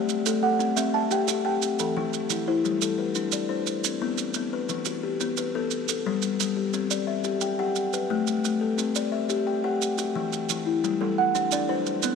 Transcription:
0.00 0.25 A3 medium
0.00 0.43 C5 medium
0.00 0.26 D5 medium
0.09 maracas medium
0.26 0.60 A3 medium
0.26 0.60 A4 medium
0.26 maracas medium
0.43 0.77 A4 medium
0.43 0.94 F#5 medium
0.59 0.94 C4 medium
0.59 maracas medium
0.76 1.11 C4 medium
0.76 0.93 E5 medium
0.76 maracas medium
0.94 1.45 E5 medium
0.94 1.45 A5 medium
1.11 1.44 G4 medium
1.11 1.44 G5 medium
1.11 maracas medium
1.28 1.62 G4 medium
1.28 1.79 F#5 medium
1.28 maracas medium
1.45 1.62 G4 medium
1.45 1.96 G5 medium
1.62 maracas medium
1.79 2.14 E3 medium
1.79 2.31 A4 medium
1.79 maracas medium
1.97 2.29 E3 medium
1.97 2.48 G4 medium
2.13 maracas medium
2.30 2.64 E3 medium
2.30 2.64 E4 medium
2.30 maracas medium
2.48 2.82 E4 medium
2.48 2.99 C5 medium
2.65 2.99 G3 medium
2.65 maracas soft
2.82 3.33 A4 medium
2.82 maracas medium
2.98 3.49 B4 medium
3.15 3.48 D4 medium
3.15 maracas soft
3.32 3.84 D5 medium
3.32 maracas medium
3.49 3.66 D4 medium
3.49 3.83 C5 medium
3.67 maracas medium
3.84 4.35 C4 medium
3.84 maracas medium
4.02 4.35 B3 medium
4.18 maracas medium
4.34 4.70 B3 medium
4.34 maracas medium
4.53 4.87 B4 medium
4.69 5.03 E3 medium
4.69 maracas medium
4.85 5.37 F#4 medium
4.85 maracas medium
5.03 5.55 G4 medium
5.20 5.54 B3 medium
5.20 maracas medium
5.37 5.89 B4 medium
5.37 maracas medium
5.55 5.72 B3 medium
5.55 5.88 A4 medium
5.71 maracas medium
5.88 6.40 A4 medium
5.88 maracas medium
6.06 6.39 G3 medium
6.22 maracas medium
6.40 6.74 G3 medium
6.40 maracas medium
6.57 6.91 G4 medium
6.73 7.08 C4 medium
6.73 maracas medium
6.91 7.42 D5 medium
6.91 maracas medium
7.07 7.59 E5 medium
7.24 7.58 G4 medium
7.24 maracas medium
7.41 7.93 G5 medium
7.41 maracas medium
7.59 7.76 G4 medium
7.59 7.94 F#5 medium
7.76 maracas medium
7.93 8.45 B4 medium
7.93 maracas medium
8.10 8.43 A3 medium
8.27 maracas medium
8.45 8.79 A3 medium
8.45 maracas medium
8.61 8.96 A4 medium
8.78 9.13 C4 medium
8.78 maracas medium
8.96 9.47 D5 medium
8.96 maracas medium
9.12 9.64 E5 medium
9.30 9.63 G4 medium
9.30 maracas soft
9.47 9.98 G5 medium
9.64 9.81 G4 medium
9.64 9.98 F#5 medium
9.82 maracas medium
9.98 10.50 F#4 medium
9.98 maracas medium
10.16 10.49 E3 medium
10.33 maracas medium
10.49 10.84 E3 medium
10.49 maracas medium
10.66 11.01 E4 medium
10.84 11.18 G3 medium
10.84 maracas medium
11.01 11.35 G3 medium
11.01 11.52 A4 medium
11.18 11.69 F#5 medium
11.35 11.68 D4 medium
11.35 maracas soft
11.52 11.86 D4 medium
11.52 12.03 D5 medium
11.52 maracas medium
11.69 11.86 D4 medium
11.69 12.15 B4 medium
11.69 12.03 C5 medium
11.86 maracas medium
12.03 12.15 B3 medium
12.03 12.15 C4 medium
12.03 maracas medium

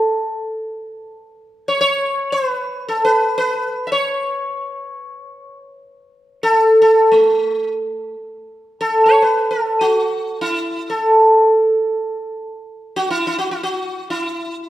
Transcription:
0.00 1.10 A4 medium
1.68 1.80 C#5 medium
1.81 2.34 C#5 loud
2.32 2.47 C5 medium
2.47 2.88 B4 medium
2.88 3.04 A4 medium
3.05 3.36 B4 medium
3.38 3.87 B4 medium
3.87 3.91 E5 medium
3.92 5.57 C#5 medium
6.43 6.81 A4 medium
6.82 7.11 A4 medium
7.12 8.15 A3 medium
8.81 9.07 A4 medium
9.06 9.22 C#5 medium
9.22 9.50 B4 medium
9.51 9.81 A4 medium
9.81 10.41 F#4 medium
10.41 10.90 E4 medium
10.90 12.42 A4 medium
12.96 13.10 F#4 medium
13.11 13.26 E4 medium
13.27 13.38 E4 medium
13.39 13.50 F#4 medium
13.51 13.63 E4 medium
13.63 14.10 F#4 medium
14.10 14.69 E4 medium

